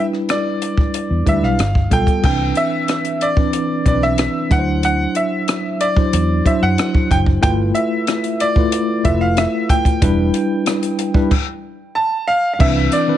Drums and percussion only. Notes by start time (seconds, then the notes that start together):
0.13 cross-stick
0.29 cross-stick, closed hi-hat
0.62 closed hi-hat
0.77 kick
0.94 closed hi-hat
1.26 kick, closed hi-hat
1.44 cross-stick
1.59 cross-stick, closed hi-hat
1.75 kick
1.91 kick, closed hi-hat
2.07 kick, closed hi-hat
2.23 kick, crash
2.55 closed hi-hat
2.88 cross-stick, closed hi-hat
3.05 closed hi-hat
3.21 closed hi-hat
3.37 kick
3.53 closed hi-hat
3.86 kick, closed hi-hat
4.03 cross-stick
4.18 cross-stick, closed hi-hat
4.51 kick, closed hi-hat
4.83 closed hi-hat
5.15 closed hi-hat
5.48 cross-stick, closed hi-hat
5.81 closed hi-hat
5.96 kick
6.13 closed hi-hat
6.46 kick, closed hi-hat
6.78 cross-stick, closed hi-hat
6.95 kick
7.11 kick, closed hi-hat
7.26 kick
7.43 kick, closed hi-hat
7.75 closed hi-hat
8.07 cross-stick, closed hi-hat
8.24 closed hi-hat
8.40 closed hi-hat
8.56 kick
8.72 closed hi-hat
9.05 kick, closed hi-hat
9.37 cross-stick, closed hi-hat
9.69 kick, closed hi-hat
9.85 kick, closed hi-hat
10.02 kick, closed hi-hat
10.34 closed hi-hat
10.66 cross-stick, closed hi-hat
10.83 closed hi-hat
10.99 closed hi-hat
11.14 kick
11.31 kick, crash
12.60 kick, crash
12.92 closed hi-hat